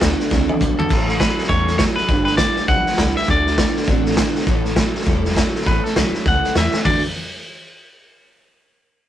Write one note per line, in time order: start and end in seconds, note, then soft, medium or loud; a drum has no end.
0.00 0.17 D2 medium
0.00 0.29 D3 medium
0.00 0.19 A3 medium
0.00 0.29 B3 loud
0.00 0.19 D4 medium
0.00 0.19 F#4 medium
0.00 0.16 A4 medium
0.00 0.17 A4 medium
0.00 kick medium
0.00 snare loud
0.00 hi-hat pedal medium
0.18 0.29 D4 soft
0.18 0.30 F#4 medium
0.18 0.30 A4 medium
0.18 muted upright bass stroke medium
0.18 snare soft
0.30 0.47 C2 medium
0.30 0.49 D3 medium
0.30 0.59 D3 medium
0.30 0.49 A3 medium
0.30 0.59 C4 loud
0.30 0.49 D4 loud
0.30 0.47 F#4 medium
0.30 0.46 A4 medium
0.30 kick loud
0.30 snare medium
0.47 0.59 D4 medium
0.47 0.60 F#4 medium
0.47 0.60 A4 medium
0.47 muted upright bass stroke medium
0.47 high tom medium
0.59 0.76 B1 medium
0.59 0.89 D3 loud
0.59 0.78 A3 medium
0.59 0.89 B3 loud
0.59 0.78 D4 medium
0.59 0.77 F#4 medium
0.59 0.76 A4 medium
0.59 kick medium
0.59 hi-hat pedal medium
0.59 mid tom medium
0.77 0.89 D4 soft
0.77 0.90 F#4 soft
0.77 0.90 A4 medium
0.77 1.07 A4 medium
0.77 muted upright bass stroke medium
0.77 floor tom medium
0.89 1.24 A1 loud
0.89 1.08 A2 medium
0.89 1.18 A2 medium
0.89 1.08 E3 medium
0.89 1.18 E3 loud
0.89 1.08 A3 medium
0.89 1.07 C#4 medium
0.89 1.07 E4 medium
0.89 1.06 A4 medium
0.89 kick loud
0.89 snare soft
0.89 crash medium
1.07 1.17 A3 soft
1.07 1.18 C#4 soft
1.07 1.19 E4 medium
1.07 1.19 A4 medium
1.07 snare soft
1.18 1.48 A2 medium
1.18 1.48 F#3 medium
1.18 1.37 A3 medium
1.18 1.37 C#4 medium
1.18 1.36 E4 medium
1.18 1.36 A4 medium
1.18 1.48 B4 medium
1.18 kick medium
1.18 snare loud
1.18 hi-hat pedal medium
1.37 1.49 A3 medium
1.37 1.49 C#4 soft
1.37 1.49 E4 medium
1.37 1.49 A4 medium
1.37 muted upright bass stroke medium
1.37 snare soft
1.44 snare soft
1.49 1.83 E2 medium
1.49 1.68 A2 medium
1.49 1.77 A2 medium
1.49 1.68 E3 medium
1.49 1.78 G3 loud
1.49 1.68 A3 medium
1.49 1.68 C#4 medium
1.49 1.68 E4 medium
1.49 1.66 A4 medium
1.49 1.77 C#5 medium
1.49 kick loud
1.49 snare soft
1.67 1.78 A3 soft
1.67 1.79 C#4 soft
1.67 1.80 E4 medium
1.67 1.80 A4 medium
1.67 snare soft
1.78 2.07 A2 medium
1.78 2.07 F#3 medium
1.78 1.98 A3 medium
1.78 1.96 A4 medium
1.78 1.83 C#5 medium
1.78 kick medium
1.78 snare loud
1.78 hi-hat pedal medium
1.96 2.08 A3 soft
1.96 2.08 C#4 medium
1.96 2.09 E4 medium
1.96 2.09 A4 medium
1.96 2.24 B4 medium
1.96 muted upright bass stroke medium
1.96 snare soft
2.08 2.43 G1 loud
2.08 2.37 G2 medium
2.08 2.37 D3 loud
2.08 2.27 G3 medium
2.08 2.27 D4 medium
2.08 2.26 G4 medium
2.08 2.24 B4 medium
2.08 kick loud
2.08 snare soft
2.25 2.38 D4 soft
2.25 2.39 G4 medium
2.25 2.37 B4 loud
2.25 2.38 B4 medium
2.25 snare soft
2.37 2.66 G2 medium
2.37 2.66 E3 loud
2.37 2.57 G3 medium
2.37 2.57 G4 medium
2.37 2.68 D5 loud
2.37 kick medium
2.37 snare loud
2.37 hi-hat pedal loud
2.41 2.56 B4 medium
2.56 2.67 D4 soft
2.56 2.68 G4 medium
2.56 2.68 B4 medium
2.56 muted upright bass stroke medium
2.56 snare soft
2.67 2.84 B1 medium
2.67 2.96 G2 medium
2.67 2.96 F3 loud
2.67 2.86 G3 medium
2.67 2.87 D4 medium
2.67 2.87 G4 medium
2.67 2.86 B4 medium
2.67 3.17 F#5 loud
2.67 kick loud
2.67 snare soft
2.86 2.99 D4 soft
2.86 2.99 G4 medium
2.86 2.99 B4 medium
2.86 snare soft
2.92 snare soft
2.98 3.14 C2 medium
2.98 3.26 G2 medium
2.98 3.26 E3 loud
2.98 3.17 G3 medium
2.98 3.18 D4 medium
2.98 3.17 G4 medium
2.98 kick medium
2.98 snare loud
2.98 hi-hat pedal medium
3.02 3.15 B4 medium
3.16 3.27 D4 soft
3.16 3.28 G4 soft
3.16 3.28 B4 medium
3.16 3.29 E5 loud
3.16 muted upright bass stroke medium
3.16 snare soft
3.23 snare soft
3.28 3.62 D2 loud
3.28 3.46 D3 medium
3.28 3.56 D3 medium
3.28 3.46 A3 medium
3.28 3.56 A3 loud
3.28 3.47 D4 medium
3.28 3.47 F#4 medium
3.28 3.46 A4 medium
3.28 4.15 D5 loud
3.28 kick loud
3.28 snare soft
3.47 3.58 D4 soft
3.47 3.59 F#4 medium
3.47 3.58 A4 medium
3.47 snare soft
3.58 3.85 D3 medium
3.58 3.76 A3 medium
3.58 3.86 B3 loud
3.58 3.77 D4 medium
3.58 3.76 F#4 medium
3.58 3.75 A4 medium
3.58 kick medium
3.58 snare loud
3.58 hi-hat pedal medium
3.76 3.87 D4 soft
3.76 3.88 F#4 medium
3.76 3.88 A4 medium
3.76 muted upright bass stroke medium
3.76 snare soft
3.83 snare soft
3.88 4.21 A1 medium
3.88 4.06 D3 loud
3.88 4.16 D3 medium
3.88 4.06 A3 medium
3.88 4.16 C4 loud
3.88 4.06 D4 loud
3.88 4.06 F#4 loud
3.88 4.04 A4 loud
3.88 kick loud
3.88 snare soft
4.06 4.17 D4 medium
4.06 4.17 F#4 medium
4.06 4.17 A4 medium
4.06 snare soft
4.11 snare soft
4.17 4.45 D3 medium
4.17 4.35 A3 medium
4.17 4.45 B3 loud
4.17 4.36 D4 medium
4.17 4.35 F#4 medium
4.17 4.34 A4 medium
4.17 kick medium
4.17 snare loud
4.17 hi-hat pedal medium
4.35 4.48 D4 medium
4.35 4.48 F#4 medium
4.35 4.47 A4 medium
4.35 muted upright bass stroke medium
4.35 snare soft
4.41 snare soft
4.46 4.80 A1 loud
4.46 4.65 A2 medium
4.46 4.75 A2 medium
4.46 4.65 E3 medium
4.46 4.75 E3 loud
4.46 4.66 A3 medium
4.46 4.66 C#4 medium
4.46 4.65 E4 loud
4.46 4.64 A4 loud
4.46 kick loud
4.46 snare soft
4.65 4.75 A3 medium
4.65 4.77 C#4 medium
4.65 4.77 E4 medium
4.65 4.77 A4 medium
4.65 snare soft
4.76 5.04 A2 medium
4.76 5.05 F#3 loud
4.76 4.95 A3 medium
4.76 4.96 C#4 medium
4.76 4.95 E4 medium
4.76 4.94 A4 medium
4.76 kick medium
4.76 snare loud
4.76 hi-hat pedal medium
4.94 5.05 A3 medium
4.94 5.06 C#4 medium
4.94 5.06 E4 medium
4.94 5.06 A4 medium
4.94 muted upright bass stroke medium
4.94 snare soft
5.01 snare soft
5.06 5.40 E1 medium
5.06 5.24 A2 loud
5.06 5.34 A2 medium
5.06 5.25 E3 medium
5.06 5.34 G3 loud
5.06 5.25 A3 medium
5.06 5.25 C#4 loud
5.06 5.25 E4 loud
5.06 5.24 A4 loud
5.06 kick loud
5.06 snare soft
5.25 5.35 A3 medium
5.25 5.36 C#4 medium
5.25 5.37 E4 medium
5.25 5.37 A4 medium
5.25 snare soft
5.31 snare soft
5.36 5.64 A2 medium
5.36 5.64 F#3 medium
5.36 5.54 A3 medium
5.36 5.55 C#4 medium
5.36 5.54 E4 medium
5.36 5.53 A4 medium
5.36 kick medium
5.36 snare loud
5.36 hi-hat pedal medium
5.54 5.66 A3 medium
5.54 5.67 C#4 medium
5.54 5.67 E4 medium
5.54 5.66 A4 medium
5.54 muted upright bass stroke medium
5.54 snare soft
5.61 snare soft
5.66 5.84 A1 medium
5.66 5.84 A2 medium
5.66 5.94 A2 medium
5.66 5.85 E3 medium
5.66 5.96 E3 medium
5.66 5.85 A3 medium
5.66 5.85 C#4 medium
5.66 5.83 E4 medium
5.66 5.83 A4 medium
5.66 5.84 B4 medium
5.66 kick loud
5.66 snare soft
5.84 5.96 A3 soft
5.84 5.96 C#4 medium
5.84 5.96 E4 medium
5.84 5.97 A4 medium
5.84 5.96 A4 medium
5.84 snare soft
5.96 6.14 B1 loud
5.96 6.23 A2 medium
5.96 6.14 A2 medium
5.96 6.14 E3 medium
5.96 6.24 F#3 medium
5.96 6.15 A3 medium
5.96 6.15 C#4 medium
5.96 6.14 E4 medium
5.96 6.13 A4 medium
5.96 6.27 B4 loud
5.96 snare loud
5.96 hi-hat pedal medium
6.14 6.24 A3 soft
6.14 6.25 C#4 medium
6.14 6.26 E4 medium
6.14 6.26 A4 medium
6.14 muted upright bass stroke medium
6.14 snare soft
6.26 6.43 C#2 medium
6.26 6.55 A2 medium
6.26 6.56 E3 loud
6.26 6.44 A3 medium
6.26 6.44 C#4 medium
6.26 6.43 E4 medium
6.26 6.42 A4 medium
6.26 6.57 F#5 loud
6.26 kick loud
6.26 snare soft
6.43 6.55 A3 soft
6.43 6.55 C#4 medium
6.43 6.56 E4 medium
6.43 6.55 A4 medium
6.43 muted upright bass stroke medium
6.43 snare soft
6.55 6.72 E2 medium
6.55 6.73 A2 medium
6.55 6.84 A2 medium
6.55 6.74 E3 medium
6.55 6.84 E3 medium
6.55 6.74 A3 medium
6.55 6.74 C#4 medium
6.55 6.73 E4 medium
6.55 6.71 A4 medium
6.55 6.79 E5 medium
6.55 snare loud
6.55 hi-hat pedal medium
6.73 6.83 A3 soft
6.73 6.85 C#4 soft
6.73 6.85 E4 soft
6.73 6.85 A4 medium
6.73 snare medium
6.84 7.02 D2 loud
6.84 6.99 D3 medium
6.84 7.00 D3 medium
6.84 7.00 A3 medium
6.84 7.00 A3 loud
6.84 7.00 D4 medium
6.84 7.01 D4 medium
6.84 7.00 F#4 medium
6.84 7.01 F#4 loud
6.84 7.00 A4 medium
6.84 7.02 D5 medium
6.84 kick loud
6.84 floor tom loud
6.84 open hi-hat medium